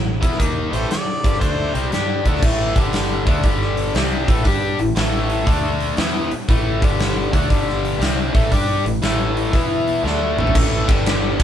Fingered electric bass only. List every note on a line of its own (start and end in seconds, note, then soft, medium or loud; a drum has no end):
0.00 0.19 A1 medium
0.23 0.38 E2 medium
0.40 0.71 D#2 medium
0.72 0.88 A1 medium
1.24 1.40 G1 medium
1.41 1.72 D2 medium
1.74 1.90 C2 medium
1.92 2.23 G2 medium
2.26 2.41 D2 medium
2.42 2.74 A1 loud
2.76 3.23 G1 medium
3.26 3.42 D2 loud
3.43 3.91 G1 medium
3.94 4.26 C2 loud
4.29 4.44 A1 loud
4.45 4.76 G2 loud
4.79 4.95 A1 medium
4.95 5.43 A1 loud
5.47 5.94 D2 loud
5.97 6.28 E2 loud
6.31 muted fingered electric bass stroke soft
6.49 6.80 A1 loud
6.82 7.29 G1 medium
7.33 7.49 D2 medium
7.50 7.97 G1 medium
8.00 8.31 C2 loud
8.35 8.50 A1 medium
8.51 8.83 G2 medium
8.84 9.00 A1 medium
9.02 9.49 A1 medium
9.53 10.00 E2 medium
10.03 10.35 D2 medium
10.37 10.53 A1 medium
10.55 10.86 A1 loud
10.88 11.36 G1 medium
11.40 11.43 D2 medium